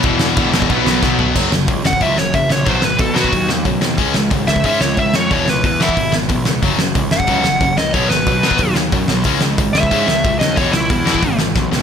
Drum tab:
CC |x---x---x-------|x---------------|----------------|----------------|
HH |----------------|----o---o---o---|o---o---o---o---|o---o---o---o---|
SD |--o---o---o-o---|--o---o---o---o-|--o---o---o---o-|--o---o---o---o-|
FT |--------------o-|----------------|----------------|----------------|
BD |o---o--oo---o---|o---o--oo---o---|o---o--oo---o---|o---o--oo---o---|

CC |----------------|----------------|----------------|----------------|
HH |o---o---o---o---|o---o---o---o---|o---o---o---o---|o---o---o---o---|
SD |--o---o---o---o-|--o---o---o---o-|--o---o---o---o-|--o---o---o---o-|
FT |----------------|----------------|----------------|----------------|
BD |o---o--oo---o---|o---o--oo---o---|o---o--oo---o---|o---o--oo---o---|

CC |----------------|
HH |o---o---o-------|
SD |--o---o---o-o-o-|
FT |----------------|
BD |o---o--oo---o---|